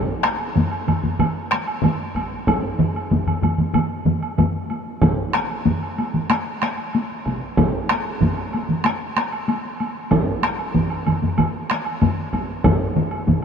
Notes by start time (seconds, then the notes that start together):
0.10 taiko high
0.23 taiko rim, taiko high
0.39 taiko high, high woodblock
0.55 taiko low-mid, taiko mid, taiko high
0.71 taiko high, high woodblock
0.88 taiko low-mid, taiko mid, taiko high, high woodblock
1.04 taiko low-mid, taiko mid, taiko high
1.19 taiko low-mid, taiko mid, taiko high, high woodblock
1.37 taiko high
1.51 taiko rim, taiko high
1.67 taiko high, high woodblock
1.82 taiko low-mid, taiko mid, taiko high, high woodblock
2.01 taiko high
2.15 taiko, taiko high, high woodblock
2.33 taiko high
2.47 taiko, taiko high, high woodblock
2.64 taiko high
2.79 taiko low-mid, taiko mid, taiko high
2.96 taiko high, high woodblock
3.11 taiko, taiko low-mid, taiko mid, taiko high
3.27 taiko low-mid, taiko mid, taiko high, high woodblock
3.42 taiko low-mid, taiko mid, taiko high, high woodblock
3.58 taiko low-mid, taiko mid, taiko high
3.74 taiko low-mid, taiko mid, taiko high, high woodblock
3.91 taiko high
4.06 taiko low-mid, taiko mid, taiko high
4.23 taiko high, high woodblock
4.38 taiko low-mid, taiko mid, taiko high, high woodblock
4.55 taiko high
4.70 taiko high, high woodblock
4.88 taiko high
5.02 taiko, taiko low-mid, taiko mid, taiko high, high woodblock
5.19 taiko high
5.33 taiko rim, taiko high
5.50 taiko high, high woodblock
5.65 taiko low-mid, taiko mid, taiko high
5.82 taiko high, high woodblock
5.98 taiko high, high woodblock
6.14 taiko low-mid, taiko mid, taiko high
6.30 taiko rim, taiko high, high woodblock
6.47 taiko high
6.62 taiko rim, taiko high
6.77 taiko high, high woodblock
6.93 taiko high, high woodblock
7.12 taiko high
7.25 taiko, taiko high, high woodblock
7.57 taiko, taiko low-mid, taiko mid, taiko high, high woodblock
7.75 taiko high
7.89 taiko rim, taiko high
8.06 taiko high, high woodblock
8.21 taiko, taiko low-mid, taiko mid, taiko high
8.37 taiko high, high woodblock
8.53 taiko high, high woodblock
8.69 taiko low-mid, taiko mid, taiko high
8.84 taiko rim, taiko high, high woodblock
8.86 taiko rim
9.00 taiko high
9.17 taiko rim, taiko high
9.32 taiko high, high woodblock
9.48 taiko high, high woodblock
9.65 taiko high
9.80 taiko high, high woodblock
9.95 taiko high
10.11 taiko, taiko low-mid, taiko mid, taiko high, high woodblock
10.27 taiko high
10.42 taiko rim, taiko high
10.59 taiko high, high woodblock
10.74 taiko, taiko low-mid, taiko mid, taiko high
10.90 taiko high, high woodblock
11.06 taiko low-mid, taiko mid, taiko high, high woodblock
11.22 taiko low-mid, taiko mid, taiko high
11.38 taiko low-mid, taiko mid, taiko high, high woodblock
11.54 taiko high
11.70 taiko rim, taiko high
11.85 taiko high, high woodblock
12.01 taiko low-mid, taiko mid, taiko high, high woodblock
12.18 taiko high
12.33 taiko, taiko high, high woodblock
12.50 taiko high
12.64 taiko, taiko low-mid, taiko mid, taiko high, high woodblock
12.80 taiko high
12.96 taiko low-mid, taiko mid, taiko high
13.11 taiko high, high woodblock
13.27 taiko, taiko low-mid, taiko mid, taiko high